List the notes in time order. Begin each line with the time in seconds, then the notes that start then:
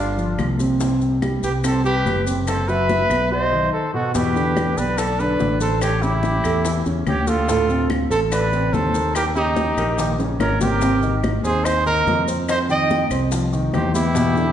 Already playing: G1 G3 D4 F4 G4
0.17 F3 F4, high bongo, high conga, maracas
0.38 C2, high bongo, low bongo, high conga, claves, maracas
0.59 C3 C4, high bongo, high conga, maracas
0.80 C3 C4, high bongo, high conga, maracas
1.01 high conga, maracas
1.22 G3 G4, high bongo, high conga, claves, maracas
1.43 C2 G4 B4, high bongo, high conga, maracas
1.64 C3 C4 A4 C5, high bongo, high conga, claves, maracas
1.84 G3 G4 B4, high bongo, high conga, maracas
2.05 F#1, high bongo, low bongo, high conga, maracas
2.26 C3 C4, high bongo, high conga, maracas
2.47 A4 C5, high bongo, high conga, claves, maracas
2.68 F#3 F#4 B4 E5, high conga, maracas
2.89 high bongo, high conga, maracas
3.10 B1 B3 B4, high bongo, high conga, claves, maracas
3.31 F#3 F#4 C5 D#5
3.52 D#3 D#4
3.73 A4 C5
3.93 B2 B3 F#4 A4
4.14 E2 B2 B3 G4 B4, high bongo, maracas
4.36 D3 D4, high conga, maracas
4.57 high bongo, high conga, claves, maracas
4.77 B1 B3 B4 D5, high bongo, high conga, maracas
4.98 A4 D5, high bongo, high conga, claves, maracas
5.19 D3 D4 B4 D5, high bongo, high conga, maracas
5.40 A1, high bongo, low bongo, high conga, maracas
5.61 A3 A4 C5, high bongo, high conga, maracas
5.81 G4 C#5, high bongo, high conga, claves, maracas
6.02 C#3 C#4 E4 G4, high conga, maracas
6.23 high bongo, high conga, maracas
6.44 E2 A3 A4, high bongo, high conga, claves, maracas
6.64 E3 E4, high bongo, high conga, maracas
6.86 E2 C#3 C#4, high bongo, high conga, maracas
7.07 D2 G4 C#5, high bongo, low bongo, high conga, claves, maracas
7.27 A3 F4 A4, high bongo, high conga, maracas
7.48 A2 A3, high bongo, high conga, maracas
7.69 C3 C4, high conga, maracas
7.90 high bongo, high conga, claves, maracas
8.10 A1 A3 A4 C5, high bongo, high conga, maracas
8.31 B4 D5, high bongo, high conga, claves, maracas
8.53 C3 C4, high bongo, high conga, maracas
8.73 D#2 A4 C5, high bongo, low bongo, high conga, maracas
8.94 A#3 A#4, high bongo, high conga, maracas
9.15 G4 A#4, high bongo, high conga, claves, maracas
9.36 C#3 C#4 D#4 G4, high conga, maracas
9.56 high bongo, high conga, maracas
9.77 A#1 A#3 A#4, high bongo, high conga, claves, maracas
9.98 D#3 D#4, high bongo, high conga, maracas
10.19 C#3 C#4, high bongo, maracas
10.40 G#1 A#4 C#5, high bongo, high conga, claves, maracas
10.61 C4 G4 A#4 C5, low bongo, high conga, maracas
10.81 C3 C4, high bongo, high conga, maracas
11.03 D#3 D#4, high conga, maracas
11.23 high bongo, high conga, claves, maracas
11.44 D#2 C4 G#4 C5, high bongo, high conga, maracas
11.65 C5 D#5, high bongo, high conga, claves, maracas
11.86 D#3 D#4 A#4 D#5, high bongo, high conga, maracas
12.07 F2, high bongo, low bongo, high conga, maracas
12.28 C4 C5, high bongo, high conga, maracas
12.48 C5 D#5, high bongo, high conga, claves, maracas
12.69 D#3 D#4 D#5 G5, high conga, maracas
12.90 high bongo, high conga, maracas
13.11 C2 C4 C5, high bongo, high conga, claves, maracas
13.32 F3 F4, high bongo, high conga, maracas
13.53 D#3 D#4, high bongo, high conga, maracas
13.73 E2 G4 C5, high bongo, low bongo, high conga, claves, maracas
13.94 B3 E4 G4 B4, high bongo, high conga, maracas
14.15 B2 B3, high bongo, high conga, maracas
14.36 D3 D4, high conga, maracas